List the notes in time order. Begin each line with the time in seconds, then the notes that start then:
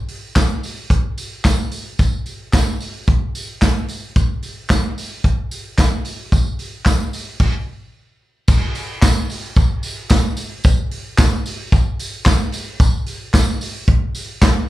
0.08 open hi-hat
0.36 kick, snare, clap, closed hi-hat, tambourine
0.63 open hi-hat, tambourine
0.90 kick, closed hi-hat, tambourine
1.17 open hi-hat, tambourine
1.44 kick, snare, clap, closed hi-hat, tambourine
1.71 open hi-hat, tambourine
1.99 kick, closed hi-hat, tambourine
2.26 open hi-hat, tambourine
2.53 kick, snare, clap, closed hi-hat, tambourine
2.80 open hi-hat, tambourine
3.07 kick, closed hi-hat, tambourine
3.35 open hi-hat, tambourine
3.61 kick, snare, clap, closed hi-hat, tambourine
3.88 open hi-hat, tambourine
4.16 kick, closed hi-hat, tambourine
4.42 open hi-hat, tambourine
4.70 kick, snare, clap, closed hi-hat, tambourine
4.98 open hi-hat, tambourine
5.24 kick, closed hi-hat, tambourine
5.51 open hi-hat, tambourine
5.78 kick, snare, clap, closed hi-hat, tambourine
6.04 open hi-hat, tambourine
6.32 kick, closed hi-hat, tambourine
6.59 open hi-hat, tambourine
6.86 kick, snare, clap, tambourine
7.13 open hi-hat, tambourine
7.40 kick, crash
8.48 kick, crash, tambourine
8.75 open hi-hat, tambourine
9.02 kick, snare, clap, closed hi-hat, tambourine
9.30 open hi-hat, tambourine
9.56 kick, closed hi-hat, tambourine
9.83 open hi-hat, tambourine
10.10 kick, snare, clap, closed hi-hat, tambourine
10.37 open hi-hat, tambourine
10.64 kick, closed hi-hat, tambourine
10.91 open hi-hat
11.18 kick, snare, clap, closed hi-hat, tambourine
11.46 open hi-hat, tambourine
11.72 kick, closed hi-hat, tambourine
11.99 open hi-hat, tambourine
12.25 kick, snare, clap, closed hi-hat, tambourine
12.52 open hi-hat, tambourine
12.80 kick, closed hi-hat, tambourine
13.06 open hi-hat, tambourine
13.34 kick, snare, clap, tambourine
13.61 open hi-hat, tambourine
13.88 kick, closed hi-hat
14.15 open hi-hat, tambourine
14.41 kick, snare, clap, closed hi-hat, tambourine